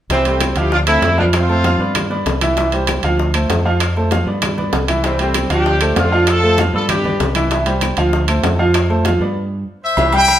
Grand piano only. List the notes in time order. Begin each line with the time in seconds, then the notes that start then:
0.10 E3 E4 E5
0.26 G3 G4 C5
0.56 F3 F4 F5
0.87 A3 A4 C5
1.17 F3 F4 F5
1.49 A3 A4 C5
1.64 F3 F4 F5
1.80 B3 B4 D5
2.10 B3 B4 D5
2.41 E3 E4 E5
2.57 E3 E4 E5
2.73 G3 G4 C5
3.04 F3 F4 F5
3.35 A3 A4 C5
3.65 F3 F4 F5
3.97 A3 A4 C5
4.12 F3 F4 F5
4.27 B3 B4 D5
4.58 B3 B4 D5
4.88 E3 E4 E5
5.03 E3 E4 E5
5.19 G3 G4 C5
5.50 F3 F4 F5
5.81 A3 A4 C5
6.12 F3 F4 F5
6.43 A3 A4 C5
6.58 F3 F4 F5
6.74 B3 B4 D5
7.05 B3 B4 D5
7.36 E3 E4 E5
7.51 E3 E4 E5
7.66 G3 G4 C5
7.97 F3 F4 F5
8.28 A3 A4 C5
8.59 F3 F4 F5
8.90 A3 A4 C5
9.05 F3 F4 F5
9.21 B3 B4 D5
9.97 E3 E4 E5
10.13 G3 G4 G5